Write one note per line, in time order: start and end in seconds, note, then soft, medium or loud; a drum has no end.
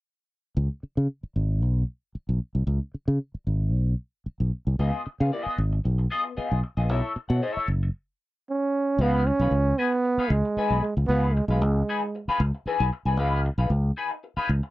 0.57 0.67 C#2 loud
0.83 muted fingered electric bass stroke soft
0.97 1.06 C#3 medium
1.23 muted fingered electric bass stroke soft
1.36 1.62 G#1 medium
1.62 1.82 B1 medium
2.15 muted fingered electric bass stroke soft
2.29 2.38 B1 medium
2.55 2.65 C2 medium
2.67 2.78 C#2 medium
2.94 muted fingered electric bass stroke soft
3.08 3.17 C#3 loud
3.34 muted fingered electric bass stroke soft
3.47 3.73 G#1 medium
3.73 3.93 B1 medium
4.26 muted fingered electric bass stroke soft
4.40 4.50 B1 medium
4.67 4.76 C2 medium
4.79 4.90 C#2 medium
4.79 5.01 B3 medium
4.79 5.01 F4 medium
4.79 5.01 G#4 medium
4.79 5.01 D#5 medium
5.05 muted clean electric guitar stroke soft
5.05 muted fingered electric bass stroke soft
5.20 5.30 C#3 loud
5.20 5.31 B3 soft
5.20 5.31 F4 medium
5.20 5.32 G#4 soft
5.20 5.33 F5 medium
5.32 5.56 B3 medium
5.32 5.57 F4 medium
5.32 5.57 G#4 medium
5.32 5.57 D#5 medium
5.46 muted fingered electric bass stroke soft
5.58 5.79 G#1 medium
5.58 muted clean electric guitar stroke soft
5.73 muted clean electric guitar stroke soft
5.84 6.05 B1 medium
5.84 muted clean electric guitar stroke soft
5.98 muted clean electric guitar stroke soft
6.10 6.32 B3 medium
6.10 6.25 F4 medium
6.10 6.24 G#4 medium
6.10 6.24 D#5 medium
6.25 muted clean electric guitar stroke soft
6.37 6.58 B3 medium
6.37 6.59 F4 medium
6.37 6.59 G#4 medium
6.37 6.59 D#5 medium
6.37 muted fingered electric bass stroke soft
6.51 6.61 B1 medium
6.63 muted clean electric guitar stroke soft
6.77 6.89 A#1 medium
6.77 6.89 B3 soft
6.77 6.90 F4 medium
6.77 6.90 G#4 medium
6.77 6.90 D#5 medium
6.89 7.00 B1 medium
6.89 7.11 E4 medium
6.89 7.11 A4 medium
6.89 7.12 C#5 medium
6.89 7.12 E5 medium
7.16 muted clean electric guitar stroke soft
7.16 muted fingered electric bass stroke soft
7.29 7.39 B2 loud
7.29 7.41 E4 soft
7.29 7.41 A4 medium
7.29 7.42 C#5 medium
7.29 7.43 F#5 medium
7.42 7.67 E4 medium
7.42 7.67 A4 medium
7.42 7.67 C#5 medium
7.42 7.67 E5 medium
7.57 muted fingered electric bass stroke soft
7.68 7.89 F#1 medium
7.68 muted clean electric guitar stroke soft
7.83 muted clean electric guitar stroke soft
8.50 9.03 C#4 medium
8.98 9.30 C#2 medium
8.98 9.28 B3 loud
8.98 9.21 D#4 medium
8.98 9.22 G#4 medium
8.98 9.22 B4 medium
8.98 9.22 F5 loud
9.27 9.80 C#4 loud
9.27 muted clean electric guitar stroke soft
9.39 9.49 B1 medium
9.39 9.53 D#4 soft
9.39 9.53 G#4 medium
9.39 9.53 B4 medium
9.39 9.54 F5 medium
9.51 9.72 C#2 medium
9.78 10.32 B3 loud
9.78 9.96 D#4 medium
9.78 9.92 G#4 medium
9.78 9.91 B4 medium
9.78 9.92 G#5 medium
9.92 muted clean electric guitar stroke soft
10.05 muted clean electric guitar stroke soft
10.18 10.30 D#4 medium
10.18 10.31 G#4 medium
10.18 10.31 B4 medium
10.18 10.31 F5 medium
10.18 muted fingered electric bass stroke soft
10.30 10.41 C#2 loud
10.30 10.82 G#3 medium
10.30 muted clean electric guitar stroke soft
10.45 muted clean electric guitar stroke soft
10.57 10.81 D#4 medium
10.57 10.82 G#4 medium
10.57 10.82 B4 medium
10.57 10.82 G#5 loud
10.57 muted fingered electric bass stroke soft
10.70 10.80 B1 medium
10.82 10.94 G#3 medium
10.82 muted clean electric guitar stroke soft
10.97 11.06 C#2 medium
10.97 muted clean electric guitar stroke soft
11.08 11.40 C#2 medium
11.08 11.35 B3 loud
11.08 11.31 D#4 medium
11.08 11.31 G#4 medium
11.08 11.31 B4 medium
11.08 11.31 F5 medium
11.34 11.47 G#3 medium
11.34 muted clean electric guitar stroke soft
11.48 11.61 B1 medium
11.48 12.23 G#3 medium
11.48 11.62 D#4 soft
11.48 11.62 G#4 medium
11.48 11.62 B4 medium
11.48 11.62 F5 medium
11.61 11.82 C#2 medium
11.61 muted clean electric guitar stroke soft
11.89 12.05 D#4 medium
11.89 12.02 G#4 medium
11.89 12.02 B4 medium
11.89 12.02 G#5 medium
12.03 muted clean electric guitar stroke soft
12.15 muted clean electric guitar stroke soft
12.28 12.40 D#4 medium
12.28 12.40 G#4 medium
12.28 12.41 B4 medium
12.28 12.40 F5 medium
12.28 muted fingered electric bass stroke soft
12.40 12.50 C#2 loud
12.40 muted clean electric guitar stroke soft
12.55 muted clean electric guitar stroke soft
12.66 12.87 D#4 medium
12.66 12.88 G#4 medium
12.66 12.88 B4 medium
12.66 12.88 G#5 loud
12.66 muted fingered electric bass stroke soft
12.80 12.89 B1 medium
12.93 muted clean electric guitar stroke soft
13.05 13.17 C2 medium
13.05 13.17 D#4 soft
13.05 13.18 G#4 medium
13.05 13.18 B4 medium
13.05 13.19 G#5 medium
13.17 13.48 C#2 medium
13.17 13.40 D#4 medium
13.17 13.40 G#4 medium
13.17 13.40 B4 medium
13.17 13.40 F5 medium
13.45 muted clean electric guitar stroke soft
13.58 13.67 B1 medium
13.58 13.70 D#4 medium
13.58 13.70 G#4 medium
13.58 13.70 B4 medium
13.58 13.70 F5 medium
13.70 13.90 C#2 medium
13.70 muted clean electric guitar stroke soft
13.97 14.14 D#4 medium
13.97 14.10 G#4 medium
13.97 14.10 B4 medium
13.97 14.11 G#5 medium
14.11 muted clean electric guitar stroke medium
14.23 muted clean electric guitar stroke soft
14.37 14.49 D#4 medium
14.37 14.49 G#4 medium
14.37 14.49 B4 medium
14.37 14.49 F5 medium
14.37 muted fingered electric bass stroke soft
14.49 14.60 C#2 medium
14.49 muted clean electric guitar stroke soft
14.63 muted clean electric guitar stroke medium